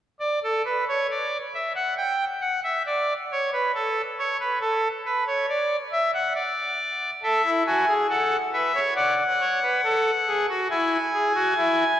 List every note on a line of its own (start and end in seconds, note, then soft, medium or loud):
0.20 0.39 D5 medium
0.44 0.62 A4 medium
0.65 0.84 B4 medium
0.88 1.07 C#5 medium
1.11 1.37 D5 medium
1.54 1.73 E5 medium
1.75 1.94 F#5 medium
1.98 2.25 G5 medium
2.41 2.60 F#5 medium
2.64 2.83 E5 medium
2.86 3.13 D5 medium
3.31 3.50 C#5 medium
3.53 3.71 B4 medium
3.75 4.02 A4 medium
4.18 4.37 C#5 medium
4.40 4.58 B4 medium
4.61 4.88 A4 medium
5.05 5.24 B4 medium
5.26 5.46 C#5 medium
5.49 5.76 D5 medium
5.92 6.11 E5 medium
6.14 6.33 F#5 medium
6.35 7.10 D5 medium
7.23 7.42 A4 medium
7.23 7.50 E5 medium
7.44 7.63 E4 medium
7.66 7.85 F#4 medium
7.66 7.93 G#5 medium
7.88 8.06 G#4 medium
8.10 8.37 A4 medium
8.10 8.37 F#5 medium
8.53 8.72 B4 medium
8.53 8.80 E5 medium
8.75 8.93 C#5 medium
8.96 9.23 D5 medium
8.96 10.46 F#5 medium
9.40 9.59 C#5 medium
9.62 9.81 B4 medium
9.84 10.11 A4 medium
10.27 10.46 G#4 medium
10.49 10.67 F#4 medium
10.70 10.97 E4 medium
10.70 12.00 G#5 medium
11.13 11.32 G#4 medium
11.34 11.53 F#4 medium
11.57 11.84 E4 medium